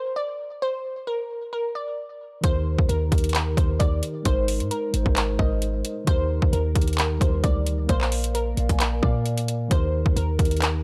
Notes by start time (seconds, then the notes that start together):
Already playing: C5
0.16 D5
0.62 C5
1.07 A#4
1.53 A#4
1.75 D5
2.41 D#2 D#3 D#4 G4 C5, kick, closed hi-hat
2.46 A#4
2.79 D#2, kick
2.89 D#2 A#4, closed hi-hat
3.09 D#2 D#3 D#4 G4, kick, closed hi-hat
3.15 A#4, closed hi-hat
3.24 closed hi-hat
3.29 closed hi-hat
3.35 A#4, clap, closed hi-hat
3.55 D#2 D#3 D#4 G4 C5, kick, closed hi-hat
3.60 A#4
3.80 D#2 D5, kick, closed hi-hat
4.03 closed hi-hat
4.23 G#1 G#3 D#4 A#4 C5, kick, closed hi-hat
4.28 C5
4.48 closed hi-hat, open hi-hat
4.60 G#2, closed hi-hat
4.71 A#4, closed hi-hat
4.91 G#1 G#3 D#4 A#4, closed hi-hat
4.96 C5
5.03 G#1 G#3 D#4 A#4, kick
5.08 C5
5.16 A#4, clap, closed hi-hat
5.37 G#1 G#3 D#4 A#4 D#5, kick
5.42 C5
5.62 closed hi-hat
5.85 closed hi-hat
6.05 D#2 D#3 D#4 G4 C5, kick, closed hi-hat
6.10 A#4
6.42 D#2, kick
6.53 D#2 A#4, closed hi-hat
6.73 D#2 D#3 D#4 G4, kick, closed hi-hat
6.78 A#4, closed hi-hat
6.88 closed hi-hat
6.93 closed hi-hat
6.98 A#4, clap, closed hi-hat
7.18 D#2 G3 D#4 G4 C5, kick, closed hi-hat
7.24 A#4
7.44 D2 D5, kick, closed hi-hat
7.67 closed hi-hat
7.87 A#1 A#3 A#4 C5 D5, kick, closed hi-hat
7.92 F5
8.01 clap
8.12 closed hi-hat, open hi-hat
8.24 closed hi-hat
8.35 A#4, closed hi-hat
8.55 A#1 A#3 A#4 D5, closed hi-hat
8.60 F5
8.67 A#1 A#3 A#4 D5, kick, closed hi-hat
8.72 G#5
8.80 A#4, clap, closed hi-hat
9.00 A#2 A#3 A#4 D5, kick
9.05 F5
9.26 closed hi-hat
9.38 closed hi-hat
9.48 closed hi-hat
9.68 D#2 D#3 D#4 G4 C5, kick, closed hi-hat
9.74 A#4
10.06 D#2, kick
10.16 D#2 A#4, closed hi-hat
10.37 D#2 D#3 D#4 G4, kick, closed hi-hat
10.42 A#4, closed hi-hat
10.51 closed hi-hat
10.57 closed hi-hat
10.62 A#4, clap, closed hi-hat